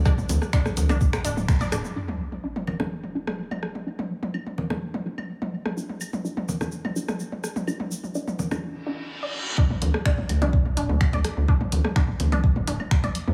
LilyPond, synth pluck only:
\new Staff \with { instrumentName = "Synth pluck" } { \time 4/4 \key c \major \tempo 4 = 126 d'16 r8. d'16 r8 d'16 r8 d'16 r8 d''16 d'16 r16 | d'16 r8. d'16 r8 d'16 r8 d'16 r8 d''16 r8 | d'16 r8. d'16 r8 d'16 r8 d'16 r8 d''16 r8 | d'16 r8. d'16 r8 d'16 r8 d'16 r8 d''16 r8 |
d'16 r8. d'16 r8 d'16 r8 d'16 r8 d''16 r8 | d'16 r8. d'16 r8 d'16 r8 d'16 r8 d''16 r8 | d'16 r8. d'16 r8 d'16 r8 d'16 r8 d''16 r8 | }